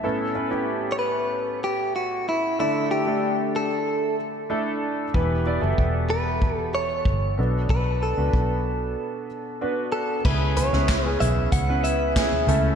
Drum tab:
CC |----------------|----------------|----------------|----------------|
HH |----------------|----------------|----------------|----------------|
CP |----------------|----------------|----------------|----------------|
SD |----------------|----------------|----------------|----------------|
FT |----------------|----------------|----------------|----------------|
BD |----------------|----------------|o---o---o---o---|o---o-----------|

CC |x---------------|
HH |--x-x-x-x-x-x-x-|
CP |----x-------x---|
SD |---oo-------o---|
FT |--o---o------oo-|
BD |o---o---o---o---|